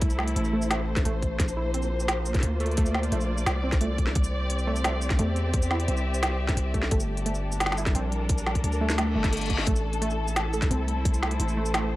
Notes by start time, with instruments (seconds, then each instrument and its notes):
Already playing: 808-style bass C2, string section A3 E4 A4 C5
0.02 kick, closed hi-hat
0.10 shaker
0.19 snare
0.28 closed hi-hat
0.36 808-style bass A1, closed hi-hat
0.45 shaker
0.53 synth pluck A3
0.62 shaker
0.71 synth pluck A3, snare, closed hi-hat
0.96 kick, snare, closed hi-hat
1.05 808-style bass A1, synth pluck A3, closed hi-hat
1.22 kick, closed hi-hat
1.40 808-style bass A#1, string section A#3, kick, snare, closed hi-hat
1.48 shaker
1.57 synth pluck E4
1.74 synth pluck C4, closed hi-hat
1.81 string section F4, shaker
2.00 shaker
2.08 snare, closed hi-hat
2.26 shaker
2.34 kick, snare, closed hi-hat
2.37 snare
2.40 808-style bass D2, snare, closed hi-hat
2.60 synth pluck A3, string section D5, closed hi-hat
2.66 closed hi-hat
2.71 closed hi-hat
2.77 synth pluck A3, kick, closed hi-hat
2.86 shaker
2.95 snare
3.03 closed hi-hat
3.12 808-style bass A#1, synth pluck A3, closed hi-hat
3.21 shaker
3.38 shaker
3.46 808-style bass C2, snare, closed hi-hat
3.64 synth pluck C4
3.72 kick, snare, closed hi-hat
3.81 synth pluck A3, closed hi-hat
3.98 kick, closed hi-hat
4.07 snare
4.15 808-style bass C2, string section C4, kick, closed hi-hat
4.24 string section G4, shaker
4.50 closed hi-hat
4.59 shaker
4.67 synth pluck A3
4.76 shaker
4.84 synth pluck A3, snare, closed hi-hat
5.02 shaker
5.10 kick, snare, closed hi-hat
5.19 808-style bass E2, synth pluck A3, closed hi-hat
5.30 string section E5
5.36 closed hi-hat
5.54 kick, closed hi-hat
5.62 shaker
5.71 synth pluck E4, snare
5.80 closed hi-hat
5.88 808-style bass C2, synth pluck C4, closed hi-hat
5.97 shaker
6.14 shaker
6.23 snare, closed hi-hat
6.49 kick, snare, closed hi-hat
6.57 808-style bass C2, closed hi-hat
6.74 synth pluck A3, kick, closed hi-hat
6.83 snare
6.91 808-style bass G1, string section G3, synth pluck A3, kick, closed hi-hat
7.00 shaker
7.04 string section A4
7.11 string section D4
7.17 closed hi-hat
7.26 synth pluck A3, closed hi-hat
7.35 shaker
7.52 shaker
7.60 snare, closed hi-hat
7.66 snare
7.72 snare
7.77 synth pluck E4, string section A#4, shaker
7.86 kick, snare, closed hi-hat
7.95 808-style bass A#1, synth pluck C4, closed hi-hat
8.12 closed hi-hat
8.29 kick, closed hi-hat
8.38 shaker
8.46 snare
8.55 kick, closed hi-hat
8.64 808-style bass D2, closed hi-hat
8.72 shaker
8.81 synth pluck A3
8.90 snare, shaker
8.98 synth pluck A3, snare, closed hi-hat, reverse cymbal
9.15 808-style bass G1, synth pluck A3
9.24 kick, snare, closed hi-hat
9.33 synth pluck A3, closed hi-hat
9.37 closed hi-hat
9.41 closed hi-hat
9.46 closed hi-hat
9.50 kick, closed hi-hat
9.59 snare
9.67 808-style bass A1, synth pluck A3, string section A3, kick, closed hi-hat
9.76 shaker
9.92 string section E4, closed hi-hat
10.02 synth pluck A3, closed hi-hat
10.10 shaker
10.28 shaker
10.36 snare, closed hi-hat
10.53 synth pluck A4, shaker
10.62 kick, snare, closed hi-hat
10.71 808-style bass C2, synth pluck C4, closed hi-hat
10.88 string section C5, closed hi-hat
11.05 kick, closed hi-hat
11.14 shaker
11.23 snare
11.31 closed hi-hat
11.40 808-style bass A1, closed hi-hat
11.48 shaker
11.57 synth pluck A3
11.66 shaker
11.74 synth pluck A3, snare, closed hi-hat